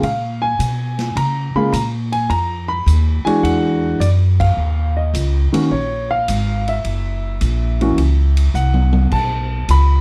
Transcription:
0.02 0.58 A#2 medium
0.02 0.43 F5 medium
0.02 ride soft
0.42 1.12 G#5 medium
0.59 1.14 B2 medium
0.59 hi-hat pedal medium
0.59 ride medium
0.99 snare soft
0.99 ride soft
1.15 1.52 C#3 medium
1.15 1.53 A#5 medium
1.15 ride medium
1.55 1.72 C#3 medium
1.55 1.72 G#3 medium
1.55 1.72 A#3 medium
1.55 1.72 F4 medium
1.55 1.72 B5 medium
1.55 muted upright bass stroke soft
1.72 2.28 A#2 medium
1.72 1.81 A#5 medium
1.72 hi-hat pedal medium
1.72 ride medium
2.12 2.31 G#5 medium
2.12 ride soft
2.29 2.85 F2 medium
2.29 2.70 A#5 medium
2.29 ride soft
2.68 3.22 B5 medium
2.86 3.23 D#2 medium
2.86 hi-hat pedal medium
2.86 ride medium
3.25 3.97 E3 medium
3.25 3.97 G#3 medium
3.25 3.98 D4 medium
3.25 3.98 F#4 medium
3.25 3.42 G#5 medium
3.25 muted upright bass stroke soft
3.25 ride soft
3.43 3.99 E2 medium
3.43 3.96 F#5 medium
3.43 ride medium
4.00 4.55 F#2 medium
4.00 4.09 D5 medium
4.00 hi-hat pedal soft
4.00 ride medium
4.40 4.98 F5 medium
4.40 kick medium
4.40 ride medium
4.57 5.12 D#2 medium
4.97 5.50 D#5 medium
5.14 5.50 C#2 medium
5.14 hi-hat pedal medium
5.14 ride medium
5.52 5.69 D#3 medium
5.52 5.69 A#3 soft
5.52 5.70 C#4 medium
5.52 5.70 F#4 medium
5.52 muted upright bass stroke soft
5.52 ride medium
5.71 6.26 A#1 medium
5.71 6.08 C#5 medium
6.11 6.69 F5 medium
6.28 6.83 G#1 medium
6.28 hi-hat pedal soft
6.28 ride medium
6.68 8.52 E5 medium
6.68 ride soft
6.84 7.40 F#1 medium
6.84 ride soft
7.41 7.97 A#1 medium
7.41 hi-hat pedal soft
7.41 ride medium
7.81 7.97 E3 medium
7.81 7.97 A#3 soft
7.81 7.97 C#4 soft
7.81 7.98 F#4 medium
7.81 ride soft
7.98 8.53 C#2 medium
7.98 ride medium
8.37 ride medium
8.54 9.10 C2 medium
8.54 9.14 F#5 medium
8.54 hi-hat pedal soft
8.74 high tom soft
8.93 high tom medium
9.12 9.67 B1 medium
9.12 9.71 A5 medium
9.12 kick medium
9.12 crash medium
9.68 10.01 C#2 medium
9.68 10.01 B5 medium
9.68 hi-hat pedal soft
9.68 ride medium

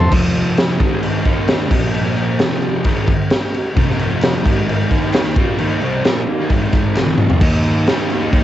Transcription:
0.00 0.10 F3 loud
0.00 0.12 A4 medium
0.00 0.13 C5 loud
0.00 floor tom medium
0.10 0.78 F2 medium
0.10 0.79 C3 loud
0.10 0.79 F3 loud
0.10 kick loud
0.10 crash loud
0.10 crash medium
0.36 crash medium
0.57 snare loud
0.57 crash medium
0.78 1.24 G#2 medium
0.78 1.24 D#3 loud
0.78 1.25 G#3 loud
0.78 kick loud
0.78 crash medium
1.03 crash medium
1.25 1.71 D#3 loud
1.25 1.71 A#3 medium
1.25 1.72 D#4 loud
1.25 kick medium
1.25 crash medium
1.48 snare loud
1.48 crash medium
1.71 2.39 A#2 medium
1.71 2.39 F3 loud
1.71 2.40 A#3 loud
1.71 kick loud
1.71 crash loud
1.94 crash medium
2.06 snare soft
2.17 crash medium
2.39 2.85 F2 loud
2.39 2.86 C3 loud
2.39 2.86 F3 loud
2.39 snare loud
2.39 crash medium
2.62 crash medium
2.84 3.08 G#2 medium
2.84 3.08 D#3 loud
2.84 3.09 G#3 loud
2.84 kick medium
2.84 crash medium
3.07 kick medium
3.07 crash medium
3.30 snare loud
3.30 crash medium
3.54 crash medium
3.76 4.44 F2 loud
3.76 4.45 C3 loud
3.76 4.45 F3 loud
3.76 kick loud
3.76 crash medium
3.90 snare soft
3.99 crash medium
4.22 snare loud
4.22 clap loud
4.22 crash medium
4.44 4.90 G#2 loud
4.44 4.89 D#3 loud
4.44 4.91 G#3 loud
4.44 kick loud
4.44 crash medium
4.69 crash medium
4.91 5.36 D#3 loud
4.91 5.36 A#3 medium
4.91 5.36 D#4 loud
4.91 kick medium
4.91 crash medium
5.14 snare loud
5.14 clap medium
5.14 crash medium
5.36 5.59 A#2 medium
5.36 5.59 F3 medium
5.36 5.59 A#3 loud
5.36 kick loud
5.36 crash medium
5.58 5.81 D#3 loud
5.58 5.82 A#3 loud
5.58 5.82 D#4 loud
5.58 crash medium
5.81 6.04 C3 loud
5.81 6.05 G3 medium
5.81 6.05 C4 loud
5.81 crash medium
6.04 6.27 A#2 loud
6.04 6.27 F3 loud
6.04 6.27 A#3 loud
6.04 snare loud
6.04 clap loud
6.04 crash medium
6.27 6.49 D#3 medium
6.27 6.50 A#3 loud
6.27 6.50 D#4 loud
6.27 crash medium
6.49 6.95 G#2 medium
6.49 6.96 D#3 loud
6.49 6.96 G#3 loud
6.49 kick medium
6.49 crash medium
6.72 kick medium
6.72 clap medium
6.72 crash medium
6.95 7.41 F2 loud
6.95 7.41 C3 loud
6.95 7.42 F3 loud
6.95 snare medium
6.95 clap loud
7.07 high tom medium
7.18 mid tom loud
7.30 floor tom loud
7.41 7.87 D#3 loud
7.41 7.87 A#3 loud
7.41 7.88 D#4 loud
7.41 kick loud
7.41 crash loud
7.64 crash medium
7.87 8.09 D#3 medium
7.87 8.10 A#3 medium
7.87 8.10 D#4 loud
7.87 snare loud
7.87 crash loud
8.10 8.31 D#3 medium
8.10 8.32 A#3 loud
8.10 8.33 D#4 loud
8.10 crash medium
8.33 8.44 D#3 loud
8.33 8.44 A#3 loud
8.33 8.44 D#4 loud
8.33 kick loud
8.33 crash medium

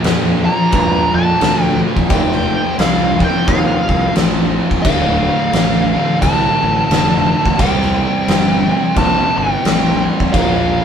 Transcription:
0.00 0.45 F2 medium
0.00 0.43 A#2 loud
0.00 0.47 F3 loud
0.00 0.44 A#3 medium
0.04 snare loud
0.04 crash medium
0.45 1.40 A#2 medium
0.45 1.43 F3 medium
0.45 1.40 A#3 medium
0.45 1.16 A#5 loud
0.72 0.98 G2 loud
0.72 kick loud
0.72 crash medium
1.14 1.31 F2 medium
1.14 1.63 A5 loud
1.41 1.83 D2 medium
1.41 2.09 A#2 medium
1.41 2.11 F3 medium
1.41 2.10 A#3 loud
1.41 snare loud
1.41 crash medium
1.63 1.79 G5 loud
1.97 kick medium
2.09 2.52 F1 loud
2.09 3.17 F2 loud
2.09 3.18 C3 loud
2.09 2.75 G5 loud
2.09 kick loud
2.09 crash medium
2.13 3.18 F3 loud
2.32 snare soft
2.78 3.20 C2 medium
2.78 3.22 F5 loud
2.78 snare loud
2.78 crash medium
3.18 4.15 C3 medium
3.18 4.14 F3 medium
3.18 3.49 G5 medium
3.18 kick medium
3.23 4.14 F2 medium
3.48 3.73 D#2 medium
3.48 4.13 F5 medium
3.48 kick loud
3.48 crash medium
3.89 4.06 C2 loud
3.89 kick medium
4.16 4.58 A1 medium
4.16 4.83 F2 medium
4.16 4.84 C3 medium
4.16 4.85 F3 medium
4.16 snare loud
4.16 crash medium
4.71 kick medium
4.82 5.27 D1 loud
4.82 5.92 D2 loud
4.82 5.93 A2 loud
4.82 6.17 F5 loud
4.82 kick loud
4.82 crash medium
4.87 5.92 D3 loud
5.52 5.95 A1 medium
5.52 snare loud
5.52 crash medium
5.94 6.89 D2 medium
5.94 6.90 A2 medium
5.94 6.89 D3 medium
6.22 6.47 C2 medium
6.22 7.60 A5 loud
6.22 kick loud
6.22 crash medium
6.63 6.80 A1 loud
6.89 7.31 F1 medium
6.89 7.57 D2 medium
6.89 7.58 A2 medium
6.89 snare loud
6.89 crash medium
6.94 7.59 D3 loud
7.46 kick medium
7.58 8.01 C2 loud
7.58 8.66 C3 loud
7.58 8.67 G3 loud
7.58 8.97 G5 loud
7.58 kick loud
7.58 crash medium
7.62 8.67 C4 loud
7.82 snare soft
8.28 8.70 G1 medium
8.28 snare loud
8.28 crash medium
8.68 9.64 G3 medium
8.68 9.63 C4 medium
8.72 9.63 C3 medium
8.96 9.22 A#1 loud
8.96 9.37 A5 loud
8.96 kick loud
8.96 crash medium
9.37 9.54 G1 medium
9.37 10.03 G5 medium
9.64 10.07 A1 medium
9.64 10.32 C3 medium
9.64 10.33 G3 medium
9.64 snare loud
9.64 crash medium
9.68 10.34 C4 loud
10.20 kick medium
10.32 10.76 A#1 loud
10.32 10.85 A#2 loud
10.32 10.85 F3 loud
10.32 10.85 F5 loud
10.32 kick loud
10.32 crash medium
10.37 10.85 A#3 loud

